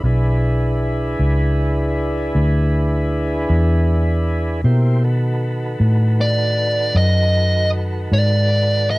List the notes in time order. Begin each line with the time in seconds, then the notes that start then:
0.04 B1 D4 E4 G#4 B4
1.19 C#2
2.35 D2
3.50 E2
4.64 B2 A#3 E4 G4 C5
5.04 D#3 F#4 A4 B4
5.80 A2
6.21 D5
6.95 F#2 D#5
8.12 G#2 D5
8.90 E5